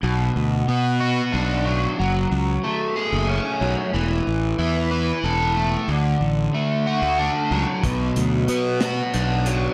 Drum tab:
HH |------|------|------|------|
SD |------|------|------|------|
BD |------|------|------|------|

HH |xxxxxx|
SD |---o--|
BD |o-----|